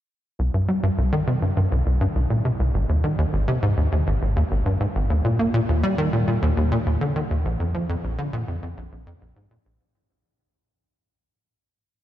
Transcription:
0.39 0.50 C2 medium
0.54 0.68 G2 medium
0.68 0.79 G3 medium
0.83 0.90 G2 loud
0.98 1.12 C2 medium
1.12 1.24 D#3 loud
1.27 1.38 C3 medium
1.42 1.53 G2 medium
1.57 1.68 G2 medium
1.72 1.83 C2 medium
1.86 2.00 C2 medium
2.01 2.07 G2 medium
2.15 2.26 C2 medium
2.30 2.41 A#2 medium
2.45 2.52 C3 medium
2.60 2.74 C2 medium
2.74 2.85 G#1 medium
2.89 3.03 D#2 medium
3.04 3.15 D#3 medium
3.18 3.25 D#2 medium
3.33 3.47 G#1 medium
3.48 3.59 C3 loud
3.63 3.74 G#2 medium
3.77 3.88 D#2 medium
3.92 4.03 D#2 medium
4.07 4.18 G#1 medium
4.22 4.36 G#1 medium
4.36 4.43 D#2 medium
4.51 4.62 G#1 medium
4.66 4.77 G2 medium
4.80 4.87 G#2 medium
4.95 5.09 G#1 medium
5.10 5.21 D#2 medium
5.24 5.38 A#2 medium
5.39 5.50 A#3 medium
5.54 5.60 A#2 loud
5.69 5.83 D#2 medium
5.83 5.94 G3 loud
5.98 6.09 D#3 medium
6.13 6.24 A#2 medium
6.27 6.38 A#2 medium
6.42 6.53 D#2 medium
6.57 6.71 D#2 medium
6.72 6.78 A#2 medium
6.86 6.97 D#2 medium
7.01 7.12 D3 medium
7.16 7.22 D#3 medium
7.30 7.44 D#2 medium
7.45 7.56 A#1 medium
7.60 7.74 F2 medium
7.74 7.85 F3 medium
7.89 7.96 F2 loud
8.04 8.18 A#1 medium
8.18 8.29 D3 loud
8.33 8.44 A#2 loud
8.48 8.59 F2 medium
8.63 8.74 F2 medium
8.77 8.88 A#1 medium
8.92 9.06 A#1 medium
9.07 9.13 F2 loud
9.21 9.32 A#1 medium
9.36 9.47 G#2 medium
9.51 9.57 A#2 medium
9.66 9.80 A#1 medium

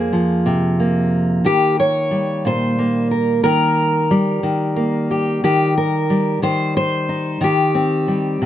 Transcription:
0.00 1.45 F2 medium
0.00 0.12 F3 medium
0.00 0.79 A#3 soft
0.00 1.45 G#4 medium
0.00 0.12 C5 loud
0.13 1.45 F3 medium
0.46 1.44 C3 medium
0.80 2.77 A#3 soft
1.44 3.45 D#3 medium
1.44 1.79 G4 medium
1.80 2.45 C#5 medium
2.11 4.10 G3 medium
2.45 3.40 A#2 medium
2.45 3.11 C5 medium
2.79 4.75 A#3 soft
3.11 3.40 A#4 soft
3.44 4.43 D#3 medium
3.44 5.10 A#4 loud
4.11 6.10 G3 medium
4.43 5.43 D#3 medium
4.76 5.43 A#3 soft
5.11 5.44 G4 soft
5.44 6.42 D#3 medium
5.44 5.77 G4 medium
5.78 6.43 A#4 medium
6.10 7.38 G3 soft
6.42 7.38 D#3 medium
6.42 6.76 C5 loud
6.77 7.43 C5 loud
7.09 7.38 D#4 soft
7.41 8.41 D#3 medium
7.41 8.46 G4 medium
7.75 8.46 C4 soft
8.08 8.46 G3 soft
8.42 8.46 C3 medium

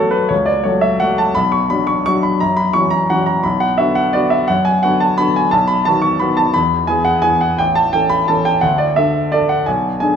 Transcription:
0.00 0.33 F#2 medium
0.00 0.33 F#3 soft
0.00 0.33 A3 soft
0.00 0.33 F#4 medium
0.00 0.12 A4 medium
0.00 0.29 C#5 medium
0.00 0.33 F#5 medium
0.11 0.29 B4 medium
0.29 0.63 C#2 medium
0.29 0.47 C#5 medium
0.46 0.64 D5 medium
0.64 0.97 F#3 soft
0.64 0.97 A3 soft
0.64 0.98 F#4 soft
0.64 0.82 C#5 medium
0.81 1.00 E5 medium
1.00 1.33 F#3 soft
1.00 1.33 A3 soft
1.00 1.33 F#4 soft
1.00 1.18 F#5 medium
1.18 1.36 A5 medium
1.35 1.70 B1 medium
1.35 1.52 B5 medium
1.52 1.70 C#6 medium
1.70 2.02 F#3 soft
1.70 2.03 D4 soft
1.70 2.03 F#4 soft
1.70 1.88 B5 medium
1.87 2.04 C#6 medium
2.06 2.38 F#3 soft
2.06 2.38 D4 soft
2.06 2.38 F#4 soft
2.06 2.23 C#6 loud
2.23 2.40 B5 medium
2.40 2.74 F#2 medium
2.40 2.57 A#5 medium
2.57 2.74 B5 medium
2.73 3.07 E3 soft
2.73 3.07 C#4 soft
2.73 3.07 F#4 soft
2.73 2.92 C#6 medium
2.90 3.09 A#5 medium
3.10 3.41 E3 soft
3.10 3.41 C#4 soft
3.10 3.42 F#4 soft
3.10 3.27 F#5 medium
3.26 3.44 A#5 medium
3.43 3.78 B1 medium
3.43 3.61 B5 medium
3.60 3.78 F#5 medium
3.78 4.11 D3 soft
3.78 4.11 B3 soft
3.78 4.11 F#4 soft
3.78 3.96 E5 medium
3.95 4.14 F#5 medium
4.13 4.45 D3 soft
4.13 4.45 B3 soft
4.13 4.46 F#4 soft
4.13 4.31 D5 medium
4.30 4.48 E5 medium
4.48 4.82 F#2 medium
4.48 4.65 F#5 medium
4.65 4.82 G#5 medium
4.83 5.15 D3 soft
4.83 5.15 B3 soft
4.83 5.15 F#4 soft
4.83 5.00 F#5 medium
5.00 5.18 A5 medium
5.18 5.49 D3 soft
5.18 5.49 B3 soft
5.18 5.49 F#4 soft
5.18 5.35 B5 medium
5.36 5.52 G#5 medium
5.51 5.85 B1 medium
5.51 5.68 A5 medium
5.68 5.85 B5 medium
5.85 6.18 D#3 soft
5.85 6.18 B3 soft
5.85 6.18 F#4 soft
5.85 6.03 A5 medium
6.02 6.20 C#6 medium
6.20 6.51 D#3 soft
6.20 6.52 B3 soft
6.20 6.52 F#4 soft
6.20 6.37 B5 medium
6.37 6.54 A5 medium
6.54 6.88 E2 medium
6.54 6.88 B5 medium
6.87 7.20 E3 soft
6.87 7.20 B3 soft
6.87 7.21 G#4 soft
6.87 7.06 G#5 medium
7.05 7.23 F#5 medium
7.22 7.55 E3 soft
7.22 7.55 B3 soft
7.22 7.55 G#4 soft
7.22 7.41 G#5 medium
7.41 7.58 F#5 medium
7.58 7.92 A1 medium
7.58 7.75 G5 medium
7.75 7.93 A5 medium
7.93 8.25 E3 soft
7.93 8.26 C#4 soft
7.93 8.26 A4 soft
7.93 8.10 G5 medium
8.09 8.28 B5 medium
8.28 8.60 E3 soft
8.28 8.60 C#4 soft
8.28 8.60 A4 medium
8.28 8.46 A5 medium
8.45 8.63 G5 medium
8.61 8.96 D2 medium
8.61 8.79 F#5 medium
8.78 8.96 D5 medium
8.96 9.29 D3 soft
8.96 9.29 D4 soft
8.96 9.30 A4 soft
8.96 9.32 E5 medium
9.32 9.64 D3 soft
9.32 9.64 D4 soft
9.32 9.65 A4 soft
9.32 9.50 D5 medium
9.49 9.67 F#5 medium
9.66 10.01 B1 medium
9.66 9.99 G#5 medium
10.00 10.16 D3 soft
10.00 10.16 D4 soft
10.00 10.16 G#4 soft
10.00 10.16 G#5 medium

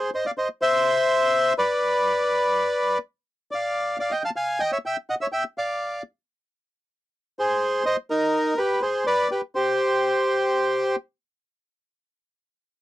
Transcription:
0.00 0.11 C5 medium
0.14 0.25 C5 medium
0.14 0.26 D#5 medium
0.26 0.31 D5 medium
0.26 0.31 F5 medium
0.38 0.48 C5 medium
0.38 0.49 D#5 medium
0.62 1.53 C5 medium
0.62 1.53 E5 loud
1.58 2.98 B4 medium
1.58 2.98 D5 medium
3.51 3.96 D5 medium
3.51 3.98 F5 medium
4.00 4.11 D5 medium
4.00 4.13 F5 medium
4.11 4.22 D#5 medium
4.11 4.23 G5 medium
4.25 4.30 F5 medium
4.25 4.30 A5 medium
4.36 4.59 F5 medium
4.36 4.61 G#5 medium
4.60 4.71 D#5 medium
4.60 4.71 G5 medium
4.72 4.78 C#5 medium
4.72 4.78 E5 medium
4.86 4.97 E5 medium
4.86 4.96 G5 medium
5.10 5.15 D#5 medium
5.10 5.15 F#5 medium
5.21 5.27 C#5 medium
5.21 5.26 E5 medium
5.32 5.44 E5 medium
5.32 5.43 G5 medium
5.58 6.02 D5 soft
5.58 6.02 F5 medium
7.39 7.83 G#4 medium
7.39 7.85 C5 medium
7.86 7.97 C5 medium
7.86 7.96 D#5 medium
8.10 8.54 D#4 medium
8.10 8.59 A#4 medium
8.58 8.80 G4 medium
8.58 8.82 B4 medium
8.82 9.04 G#4 soft
8.82 9.05 C5 medium
9.07 9.28 B4 medium
9.07 9.30 D5 medium
9.31 9.41 G4 soft
9.31 9.41 B4 medium
9.55 10.96 G4 medium
9.55 10.96 C5 medium

